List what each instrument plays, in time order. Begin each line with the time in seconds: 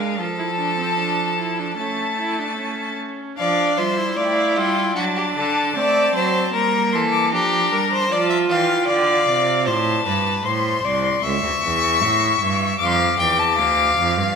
Already playing: cello G#3, viola D4, violin A#4 F5
0.19 cello F3, viola F4, violin A4 A5
0.38 viola E4
0.58 viola D4
0.79 viola C4
0.99 viola D4
1.39 viola E4
1.59 viola D4
1.77 cello A3, viola C#4, violin A4 A5
2.19 viola E4
2.39 viola D4
2.59 viola C#4
3.38 cello F3, viola D4, violin D5 F5
3.77 cello G3, viola F4, violin C5 E5
3.98 viola E4
4.17 cello A3, violin D5 F5
4.25 violin G5
4.32 violin F5
4.56 cello G3, violin F4 G5
4.96 cello F#3, viola D4, violin F#4 A5
5.17 violin G4
5.36 cello D3, violin A4
5.76 cello A3, viola C4, violin D5
6.15 cello F#3, violin C5
6.53 cello G3, viola A#3, violin A#4 A#5
6.92 cello E3, violin A4 C6
7.12 violin D6
7.32 cello F3, viola D4, violin G4 A#5
7.72 cello G3, violin A#4
7.92 violin C5
8.11 cello F3, viola F4, violin D5 A5
8.30 violin E5
8.50 cello E3, violin F5 G5
8.87 cello D3, violin D5 F5
8.95 violin G5
9.02 violin F5
9.29 cello C3
9.67 cello A2, violin C5 A5
10.06 cello G2, violin B4
10.45 cello A2, violin C5 C6
10.84 cello C2, violin D5
11.23 cello C#2, violin E5 C#6
11.43 cello D2
11.62 cello E2
12.02 cello A2
12.41 cello G2
12.79 cello F2, violin F5 D6
12.86 violin C6
12.93 violin D6
13.19 cello E2, violin G5
13.39 violin A5
13.58 cello D2, violin F5
13.98 cello F2
14.17 cello G2